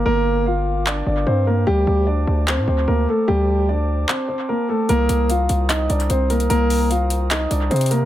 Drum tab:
HH |--------------------------------|--------------------------------|--------------------------------|x---x---x---x---x---x-x-x---x-x-|
CP |----------------x---------------|----------------x---------------|----------------x---------------|----------------x---------------|

HH |x---o---x---x---x---x---xxxxx---|
CP |----------------x---------------|